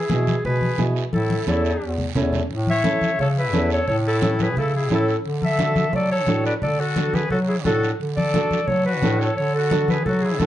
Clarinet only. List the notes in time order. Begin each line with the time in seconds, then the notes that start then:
Already playing: G#4
0.46 B4
1.13 A4
1.48 A4
2.70 E5
3.21 C#5
3.39 B4
3.72 C#5
3.88 C#5
4.08 A4
4.43 B4
4.59 A4
4.76 G#4
4.95 A4
5.45 E5
5.96 D5
6.12 C#5
6.46 D5
6.63 D5
6.80 A4
7.15 B4
7.31 A4
7.48 G#4
7.65 A4
8.17 D5
8.67 C#5
8.86 B4
9.19 C#5
9.37 C#5
9.55 A4
9.90 B4
10.06 A4
10.22 G#4
10.39 A4